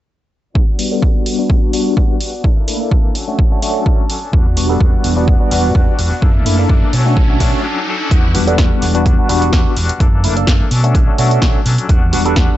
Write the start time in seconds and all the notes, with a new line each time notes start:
0.55 G3 B3 D4 F#4 D5, kick
0.67 B3 D4 F#4
0.78 G3 B3 D4 F#4, open hi-hat
0.90 G3 B3 D4 F#4 A4
1.02 G3 B3 D4 F#4, kick
1.25 G3 B3 D4 F#4, open hi-hat
1.38 G3 B3 D4 F#4
1.50 kick
1.62 G3 B3 D4 F#4
1.73 G3 B3 D4 F#4, open hi-hat
1.96 G3 B3 D4 F#4, kick
2.20 G3 B3 D4 F#4, open hi-hat
2.32 B3 D4 F#4
2.44 E3 A#3 D4 E4 A4, kick
2.56 A#3 D4 A4
2.67 A3 A#3 D4 E4, open hi-hat
2.80 A#3 D4 A4
2.91 E3 A#3 D4 A4, kick
3.14 F#3 C#4 D4 A4 C#5 A5, open hi-hat
3.28 A3 C#4 D4 F#4
3.39 kick
3.51 A3 C#4 D4 F#4
3.61 F#3 A3 C#4 D4 F#4 A4, open hi-hat
3.85 F#3 C#4 D4 F#4, kick
4.09 F#3 C#4 D4 A4, open hi-hat
4.21 C#4 D4 A4
4.33 E2 G3 B3 F#4 D5, kick, riser
4.45 B3 D4 F#4
4.57 E1 G3 B3 D4 F#4, open hi-hat
4.69 G3 B3 D4 F#4 A4
4.80 E2 G3 B3 D4 F#4, kick
5.03 E1 G3 B3 D4 F#4, open hi-hat
5.16 G3 B3 D4 F#4
5.28 E2, kick
5.40 G3 B3 D4 F#4, muted fingered electric bass stroke
5.51 E1 G3 B3 D4 F#4, open hi-hat
5.74 E2 G3 B3 D4 F#4, kick
5.98 E1 G3 B3 D4 F#4, open hi-hat
6.10 B3 D4 F#4
6.22 F#2 E3 A#3 D4 E4 A4, kick
6.34 A#3 D4 A4
6.46 F#1 A3 A#3 D4 E4, open hi-hat
6.58 A#3 D4 A4
6.69 F#2 E3 A#3 D4 A4, kick
6.92 B2 F#3 C#4 D4 A4 C#5 A5, open hi-hat
7.05 A3 C#4 D4 F#4
7.17 B1, kick
7.29 A3 C#4 D4 F#4
7.39 B2 F#3 A3 C#4 D4 F#4 A4, kick, open hi-hat
7.53 muted fingered electric bass stroke
7.63 F#3 C#4 D4 A4
7.87 F#3 C#4 D4 A4
7.99 C#4 D4 A4
8.11 E2 G3 B3 F#4, kick, closed hi-hat
8.34 E1 G3 B3 D4 F#4, open hi-hat
8.47 G3 B3 D4 F#4 A4, closed hi-hat
8.58 E2 B3 F#4, kick, snare, closed hi-hat
8.81 E1 G3 B3 D4 F#4, open hi-hat
8.94 G3 B3 D4 F#4, closed hi-hat
9.05 E2 G3 B3 D4 F#4, kick, closed hi-hat
9.18 G3 B3 D4 F#4, muted fingered electric bass stroke
9.29 E1 G3 B3 D4 F#4, open hi-hat
9.41 B3 D4 F#4, closed hi-hat
9.53 E2 G3 B3 D4 F#4, kick, snare, closed hi-hat
9.76 E1 G3 B3 D4 F#4, open hi-hat
9.89 closed hi-hat
10.00 F#2 E3 A#3 D4 A4, kick, closed hi-hat
10.23 F#1 E3 A3 A#3 D4 E4 A4, open hi-hat
10.36 A#3 D4 A4, closed hi-hat
10.47 F#2 E3 A#3 D4 A4, kick, snare, closed hi-hat
10.70 B2 F#3 C#4 D4 A4, open hi-hat
10.83 A3 C#4 D4 F#4 A4, closed hi-hat
10.94 B1 F#3 C#4 D4 A4, kick, closed hi-hat
11.07 A3 C#4 D4 F#4, muted fingered electric bass stroke
11.18 B2 F#3 A3 C#4 D4 F#4 A4, open hi-hat
11.30 C#4 D4 A4, closed hi-hat
11.41 B1 F#3 A3 C#4 D4 F#4 A4, kick, snare, closed hi-hat
11.65 B2 F#3 C#4 D4 A4, open hi-hat
11.78 closed hi-hat
11.89 E2 G3 B3 D4 F#4, kick, closed hi-hat
12.12 E1 G3 B3 D4 F#4, open hi-hat, shaker
12.24 G3 B3 D4 F#4 A4, closed hi-hat
12.36 E2 G3 B3 D4 F#4, kick, snare, closed hi-hat